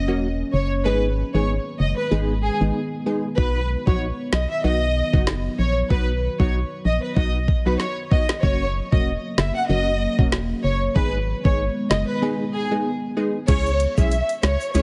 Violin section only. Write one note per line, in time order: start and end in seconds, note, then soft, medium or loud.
0.53 0.67 C#5 medium
0.85 0.98 B4 loud
1.34 1.45 C#5 medium
1.80 1.93 D#5 medium
1.97 2.08 B4 medium
2.43 2.56 G#4 medium
3.38 3.62 B4 medium
3.87 3.98 C#5 medium
4.33 4.46 D#5 medium
4.50 4.61 E5 medium
4.64 5.10 D#5 medium
5.59 5.72 C#5 medium
5.90 6.04 B4 loud
6.40 6.50 C#5 medium
6.85 6.99 D#5 medium
7.03 7.13 B4 medium
7.17 7.30 D#5 medium
7.66 7.77 B4 medium
7.80 7.93 C#5 medium
8.11 8.25 D#5 medium
8.43 8.67 C#5 loud
8.92 9.03 D#5 medium
9.38 9.51 E5 medium
9.56 9.66 F#5 medium
9.69 10.16 D#5 loud
10.64 10.78 C#5 medium
10.95 11.09 B4 loud
11.45 11.55 C#5 medium
11.90 12.04 D#5 medium
12.08 12.19 B4 medium
12.54 12.67 G#4 medium
13.48 13.72 C#5 medium
13.98 14.22 E5 medium
14.43 14.67 C#5 medium
14.75 14.82 C#5 loud